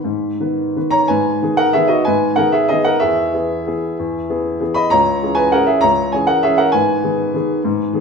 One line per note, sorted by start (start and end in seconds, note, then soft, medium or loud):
0.00 0.75 B5 medium
0.04 0.39 G#2 medium
0.40 0.72 D#3 soft
0.40 0.72 B3 soft
0.40 0.73 B4 soft
0.77 1.07 D#3 soft
0.77 1.07 B3 soft
0.77 1.07 B4 soft
0.91 1.08 C#5 medium
0.91 1.09 A#5 medium
1.08 1.41 G#2 medium
1.08 1.55 B4 medium
1.08 1.58 G#5 medium
1.42 1.71 D#3 soft
1.42 1.72 B3 soft
1.42 1.72 G#4 soft
1.57 1.73 A#4 medium
1.57 1.74 F#5 loud
1.73 2.04 D#3 soft
1.73 2.04 B3 soft
1.73 1.89 G#4 medium
1.73 1.90 E5 medium
1.88 2.04 F#4 medium
1.88 2.05 D#5 medium
2.05 2.38 G#2 medium
2.05 2.36 B4 medium
2.05 2.37 G#5 medium
2.36 2.67 D#3 soft
2.36 2.67 B3 soft
2.36 2.52 G#4 soft
2.36 2.53 A#4 medium
2.36 2.53 F#5 medium
2.52 2.68 G#4 medium
2.52 2.70 E5 medium
2.69 2.99 D#3 medium
2.69 2.99 B3 soft
2.69 2.85 G#4 medium
2.69 2.86 D#5 loud
2.84 3.01 A#4 medium
2.84 3.01 F#5 medium
3.00 3.33 E2 medium
3.00 3.32 G#4 medium
3.00 4.60 E5 medium
3.33 3.63 E3 soft
3.33 3.64 B3 soft
3.33 3.64 G#4 soft
3.67 3.96 E3 soft
3.67 3.96 B3 soft
3.67 3.96 G#4 medium
3.99 4.29 E2 medium
4.29 4.58 E3 soft
4.29 4.58 B3 soft
4.29 4.58 G#4 soft
4.61 4.89 E3 soft
4.61 4.89 B3 soft
4.61 4.89 G#4 soft
4.74 4.91 D#5 medium
4.74 4.91 B5 loud
4.90 5.22 C#2 medium
4.90 5.35 C#5 medium
4.90 5.37 A#5 loud
5.23 5.51 E3 soft
5.23 5.51 C#4 soft
5.23 5.51 G#4 soft
5.35 5.52 B4 medium
5.35 5.52 G#5 loud
5.52 5.81 E3 soft
5.52 5.81 C#4 medium
5.52 5.66 G#4 soft
5.52 5.68 A#4 medium
5.52 5.68 F#5 medium
5.66 5.82 G#4 medium
5.66 5.83 E5 medium
5.81 6.13 C#2 medium
5.81 6.11 C#5 medium
5.81 6.12 A#5 loud
6.12 6.41 E3 soft
6.12 6.42 C#4 soft
6.12 6.42 G#4 soft
6.12 6.28 C#5 medium
6.12 6.28 G#5 medium
6.27 6.43 A#4 medium
6.27 6.43 F#5 medium
6.43 6.72 E3 soft
6.43 6.72 C#4 soft
6.43 6.58 G#4 medium
6.43 6.59 E5 medium
6.58 6.73 A#4 medium
6.58 6.73 F#5 medium
6.72 7.02 G#2 medium
6.72 8.00 B4 medium
6.72 8.00 G#5 medium
7.04 7.31 D#3 soft
7.04 7.31 B3 soft
7.04 7.31 G#4 soft
7.34 7.61 D#3 medium
7.34 7.61 B3 medium
7.34 7.62 G#4 medium
7.64 7.92 G#2 medium
7.93 8.00 D#3 soft
7.93 8.00 B3 soft
7.93 8.00 G#4 medium